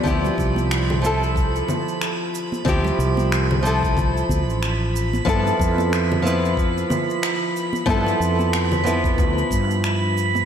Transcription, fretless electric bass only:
X:1
M:4/4
L:1/16
Q:"Swing 16ths" 1/4=92
K:Ddor
V:1 name="Fretless electric bass" clef=bass
D,, z C,,6- C,, z6 z | D,, z C,,6- C,, z D,, A,,,4 z | G,, z F,,6- F,, z6 z | G,, z F,,6 D,, z G,,4- G,, z |]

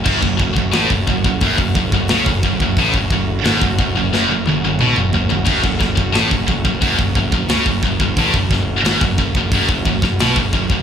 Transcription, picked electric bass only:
X:1
M:4/4
L:1/16
Q:1/4=89
K:F#m
V:1 name="Picked electric bass" clef=bass
F,,, F,,, F,,, F,,, A,,, F,,, F,,, F,,, F,,, F,,, F,,, F,,, C,, F,,, F,,, F,,, | A,,, F,,, F,,,2 G,,, F,,, F,,, F,,, F,,, F,,, F,,, F,,, B,,, F,,, F,,, F,,, | F,,, F,,, F,,, F,,, A,,, F,,, F,,, F,,, F,,, F,,, F,,, F,,, C,, F,,, F,,, F,,, | A,,, F,,, F,,,2 G,,, F,,, F,,, F,,, F,,, F,,, F,,, F,,, B,,, F,,, F,,, F,,, |]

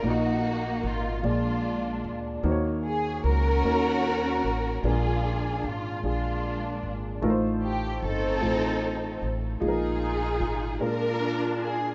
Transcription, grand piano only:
X:1
M:6/8
L:1/8
Q:3/8=50
K:Ebm
V:1 name="Grand piano"
[B,EG=de]2 z [B,FAd]2 z | [B,EG=cd]2 z [B,EGd]2 z | [A,=DFB]2 z [A,DFA]2 z | [=A,EFB=c]2 z [A,EFc]2 z |
[A,EFAB]2 z [A,=DFB]2 z |]
V:2 name="Grand piano" clef=bass
B,,3 B,,3 | E,3 z3 | B,,3 z3 | =A,,3 z3 |
B,,3 B,,3 |]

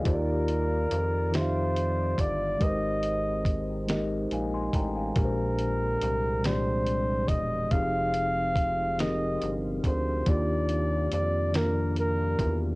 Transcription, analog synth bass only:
X:1
M:6/8
L:1/8
Q:3/8=47
K:Eb
V:1 name="Analog synth bass" clef=bass
E,,2 F,,3 G,,, | A,,,4 B,,, =A,,, | B,,,2 C,,3 =E,,, | F,,,4 G,,, D,, |
E,,2 F,,3 =E,, |]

